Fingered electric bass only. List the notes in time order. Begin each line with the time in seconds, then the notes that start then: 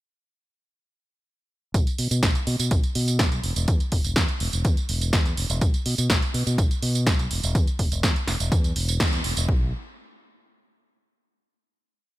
1.74 B1
1.99 B2
2.11 B2
2.23 B1
2.47 B2
2.59 B2
2.71 B1
2.95 B2
3.20 B1
3.44 E1
3.56 E1
3.68 E2
3.92 E1
4.05 E1
4.16 E2
4.41 E1
4.53 E1
4.65 E2
4.89 E1
5.13 E2
5.38 E1
5.50 E1
5.86 B2
5.98 B2
6.10 B1
6.34 B2
6.47 B2
6.58 B1
6.82 B2
7.07 B1
7.31 E1
7.44 E1
7.55 E2
7.79 E1
7.92 E1
8.03 E2
8.28 E1
8.40 E1
8.52 E2
8.76 E1
9.00 E2
9.25 E1
9.37 E1
9.49 B1